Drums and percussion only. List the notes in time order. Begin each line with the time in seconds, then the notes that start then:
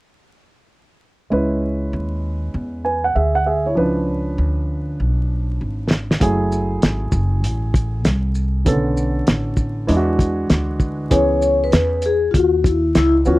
5.91 snare
6.11 snare
6.21 kick, closed hi-hat
6.52 shaker
6.82 snare, closed hi-hat
7.12 kick, shaker
7.44 closed hi-hat
7.74 kick, closed hi-hat, shaker
8.05 snare, closed hi-hat
8.35 shaker
8.66 kick, closed hi-hat
8.97 shaker
9.27 snare, closed hi-hat
9.57 kick, shaker
9.89 closed hi-hat
10.19 kick, closed hi-hat, shaker
10.50 snare, closed hi-hat
10.80 kick, shaker
11.11 kick, closed hi-hat
11.42 shaker
11.72 snare, closed hi-hat
12.02 closed hi-hat, shaker
12.34 kick, closed hi-hat
12.64 kick, closed hi-hat, shaker
12.95 snare, closed hi-hat
13.25 shaker